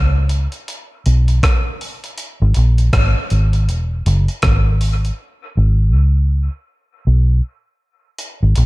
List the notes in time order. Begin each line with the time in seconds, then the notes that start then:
Already playing: C#2
0.29 closed hi-hat
0.52 closed hi-hat
0.68 closed hi-hat
1.06 B1, closed hi-hat
1.28 closed hi-hat
1.43 kick, cross-stick, closed hi-hat
1.81 open hi-hat
2.04 closed hi-hat
2.18 closed hi-hat
2.42 G#1
2.54 A#1, closed hi-hat
2.78 closed hi-hat
2.93 G#1, kick, cross-stick, closed hi-hat
3.30 G#1, closed hi-hat
3.53 closed hi-hat
3.69 E1, closed hi-hat
4.06 F#1, closed hi-hat
4.28 closed hi-hat
4.42 G#1, kick, cross-stick, closed hi-hat
4.81 open hi-hat
5.05 closed hi-hat
5.57 G#1
5.95 C#2
7.07 B1
8.18 closed hi-hat
8.43 G#1
8.56 A#1, closed hi-hat